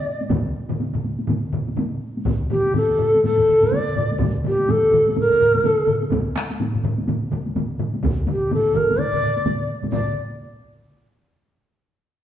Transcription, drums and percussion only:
0.21 taiko high
0.29 taiko, taiko low-mid, taiko mid, taiko high
0.69 taiko low-mid, taiko mid, taiko high
0.80 taiko high
0.94 taiko low-mid, taiko mid
1.04 taiko high
1.19 taiko high
1.27 taiko low-mid, taiko mid, taiko high
1.53 taiko low-mid, taiko mid
1.68 taiko high
1.77 taiko low-mid, taiko mid, taiko high
2.17 taiko high
2.25 taiko, taiko low-mid, taiko mid, taiko high
2.50 taiko low-mid, taiko mid, taiko high
2.66 taiko high
2.74 taiko low-mid, taiko mid, taiko high
2.98 taiko low-mid, taiko mid
3.14 taiko high
3.23 taiko low-mid, taiko mid, taiko high
3.38 taiko low-mid, taiko mid
3.47 taiko low-mid, taiko mid
3.62 taiko low-mid, taiko mid, taiko high
3.71 taiko low-mid, taiko mid, taiko high
3.96 taiko low-mid, taiko mid
4.11 taiko high
4.19 taiko, taiko low-mid, taiko mid, taiko high
4.44 taiko low-mid, taiko mid, taiko high
4.59 taiko high
4.69 taiko low-mid, taiko mid, taiko high
4.91 taiko, taiko low-mid, taiko mid
5.07 taiko high
5.16 taiko low-mid, taiko mid, taiko high
5.31 taiko low-mid, taiko mid
5.40 taiko low-mid, taiko mid
5.54 taiko low-mid, taiko mid, taiko high
5.64 taiko low-mid, taiko mid, taiko high
5.87 taiko low-mid, taiko mid
6.02 taiko high
6.11 taiko, taiko low-mid, taiko mid, taiko high
6.36 taiko rim, taiko high
6.37 taiko rim
6.50 taiko high
6.60 taiko low-mid, taiko mid, taiko high
6.74 taiko low-mid, taiko mid
6.84 taiko low-mid, taiko mid
6.98 taiko high
7.08 taiko low-mid, taiko mid, taiko high
7.31 taiko low-mid, taiko mid
7.46 taiko high
7.56 taiko low-mid, taiko mid, taiko high
7.79 taiko low-mid, taiko mid
7.94 taiko high
8.03 taiko, taiko low-mid, taiko mid, taiko high
8.27 taiko low-mid, taiko mid, taiko high
8.51 taiko low-mid, taiko mid, taiko high
8.74 taiko, taiko low-mid, taiko mid
8.89 taiko high
8.98 taiko low-mid, taiko mid, taiko high
9.13 taiko low-mid, taiko mid
9.22 taiko low-mid, taiko mid
9.37 taiko high
9.46 taiko low-mid, taiko mid, taiko high
9.83 taiko low-mid, taiko mid, taiko high
9.92 taiko, taiko low-mid, taiko mid, taiko high

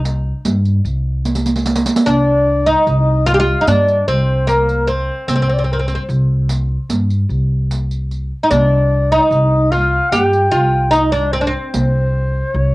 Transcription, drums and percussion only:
0.05 riq
0.45 riq
0.65 riq
0.85 riq
1.25 riq
1.35 riq
1.46 riq
1.56 riq
1.66 riq
1.76 riq
1.86 riq
1.96 riq
2.07 riq
2.67 riq
2.87 riq
3.27 riq
3.67 riq
3.88 riq
4.08 riq
4.49 riq
4.69 riq
4.88 riq
5.29 riq
5.89 riq
6.09 riq
6.49 riq
6.90 riq
7.10 riq
7.30 riq
7.71 riq
7.91 riq
8.11 riq
8.51 riq
9.32 riq
9.73 riq
10.13 riq
10.33 riq
10.54 riq
10.93 riq
11.14 riq
11.33 riq
11.74 riq

